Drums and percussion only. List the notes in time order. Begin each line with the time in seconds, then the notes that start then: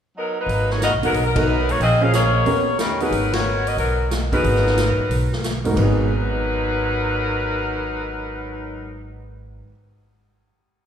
0.49 open hi-hat
0.70 snare
0.82 snare, closed hi-hat
1.03 open hi-hat
1.14 open hi-hat
1.36 kick, ride
1.69 open hi-hat
1.81 open hi-hat
2.13 snare, closed hi-hat
2.46 open hi-hat
2.79 snare, closed hi-hat
3.00 open hi-hat
3.12 open hi-hat
3.33 snare, ride
3.67 open hi-hat
3.78 open hi-hat
4.11 snare, closed hi-hat
4.32 kick, open hi-hat
4.44 open hi-hat
4.56 snare
4.66 snare
4.77 snare, closed hi-hat
5.11 open hi-hat
5.33 snare
5.44 snare, closed hi-hat
5.65 open hi-hat
5.76 kick, crash